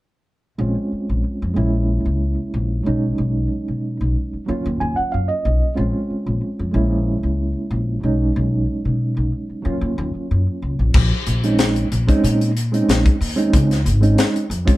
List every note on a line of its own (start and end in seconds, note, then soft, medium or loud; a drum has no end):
0.58 0.74 A#1 medium
0.58 1.53 G#3 medium
0.58 1.56 C4 medium
0.58 1.55 C#4 soft
0.58 1.57 F4 medium
0.92 muted upright bass stroke soft
1.09 1.22 A#1 medium
1.42 1.55 F2 medium
1.54 1.99 A#1 medium
1.54 2.82 G#3 medium
1.54 2.83 A#3 soft
1.54 2.83 C#4 medium
1.54 2.84 E4 medium
2.05 2.34 C#2 medium
2.54 2.82 A#1 medium
2.83 3.14 B1 medium
2.83 4.43 F#3 medium
2.83 4.44 G#3 medium
2.83 4.45 C#4 medium
2.83 4.45 D#4 medium
3.18 3.46 B1 medium
3.68 3.96 B2 medium
4.01 4.14 B1 medium
4.33 muted upright bass stroke soft
4.46 4.63 D#2 medium
4.46 5.74 F#3 medium
4.46 5.75 A#3 medium
4.46 5.74 C#4 medium
4.46 5.75 F4 medium
4.66 4.78 D#2 medium
4.80 4.95 D#2 medium
4.80 4.96 G#5 medium
4.96 5.11 F#5 medium
4.96 muted upright bass stroke soft
5.12 5.28 F#2 medium
5.12 5.28 F5 medium
5.28 5.73 D#5 medium
5.45 5.60 B1 medium
5.74 5.92 A#1 medium
5.74 6.70 G#3 medium
5.74 6.73 C4 medium
5.74 6.73 C#4 medium
5.74 6.74 F4 medium
6.10 muted upright bass stroke soft
6.26 6.40 A#1 medium
6.59 6.72 F2 medium
6.71 7.17 A#1 medium
6.71 8.00 G#3 medium
6.71 8.00 A#3 medium
6.71 8.01 C#4 medium
6.71 8.02 E4 medium
7.23 7.51 C#2 medium
7.71 7.99 A#1 medium
8.01 8.32 B1 medium
8.01 9.61 F#3 medium
8.01 9.62 G#3 medium
8.01 9.63 C#4 medium
8.01 9.63 D#4 medium
8.36 8.64 B1 medium
8.85 9.13 B2 medium
9.17 9.31 B1 medium
9.49 muted upright bass stroke soft
9.62 9.80 D#2 medium
9.62 10.91 F#3 medium
9.62 10.91 A#3 medium
9.62 10.92 C#4 medium
9.62 10.93 F4 medium
9.81 9.95 D#2 medium
9.98 10.13 D#2 medium
10.15 muted upright bass stroke soft
10.31 10.45 F#2 medium
10.62 10.78 C#2 medium
10.79 10.93 A#1 medium
10.94 11.10 A#1 medium
10.94 kick loud
10.94 crash medium
11.27 11.83 A#1 medium
11.27 closed hi-hat medium
11.43 11.85 G#3 medium
11.43 11.86 C4 medium
11.43 11.86 C#4 medium
11.43 11.86 D#4 medium
11.43 closed hi-hat soft
11.59 snare loud
11.59 closed hi-hat medium
11.76 closed hi-hat soft
11.92 12.06 A#1 medium
11.92 closed hi-hat medium
12.07 12.50 G#3 medium
12.07 12.50 C4 medium
12.07 12.50 C#4 medium
12.07 12.50 D#4 medium
12.07 kick medium
12.07 closed hi-hat soft
12.24 12.80 A#2 medium
12.24 closed hi-hat medium
12.41 closed hi-hat soft
12.57 closed hi-hat medium
12.72 13.14 G#3 medium
12.72 13.15 C4 medium
12.72 13.15 C#4 medium
12.72 13.15 D#4 medium
12.72 closed hi-hat soft
12.88 13.03 A#1 medium
12.88 snare medium
12.88 closed hi-hat medium
13.06 kick medium
13.06 closed hi-hat soft
13.21 13.49 D#2 medium
13.21 open hi-hat medium
13.36 13.78 G#3 medium
13.36 13.79 C4 medium
13.36 13.79 C#4 medium
13.36 13.79 D#4 medium
13.36 closed hi-hat soft
13.53 13.87 C#2 medium
13.53 kick loud
13.53 closed hi-hat medium
13.71 snare soft
13.71 closed hi-hat soft
13.85 14.13 G#1 medium
13.85 closed hi-hat medium
14.01 14.43 G#3 medium
14.01 14.44 C4 medium
14.01 14.44 C#4 medium
14.01 14.44 D#4 medium
14.01 closed hi-hat soft
14.18 snare loud
14.18 closed hi-hat medium
14.36 closed hi-hat soft
14.50 14.65 F2 medium
14.50 closed hi-hat medium
14.65 14.77 G#3 medium
14.65 14.77 C4 medium
14.65 14.77 C#4 medium
14.65 14.77 F4 medium
14.65 muted upright bass stroke soft
14.65 kick medium
14.65 closed hi-hat soft